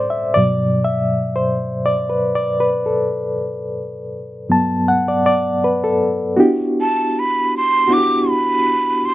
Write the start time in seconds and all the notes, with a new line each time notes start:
Already playing: A2 G3 C4 A4 C5 D5
0.10 E5
0.34 G2 B2 F#3 D5
0.84 E5
1.36 C5
1.86 D5
2.10 B4
2.35 D5
2.60 B4
2.86 A4
4.49 G2 F#3 B3 A5
4.88 F#5
5.08 D5
5.26 D5
5.64 B4
5.84 A4
6.37 B3 D4 E4 F#4 G4
6.81 A5
7.19 B5
7.57 C6
7.87 B3 D4 E4 F#4
7.93 D6
7.98 G4
8.30 B5
9.05 C6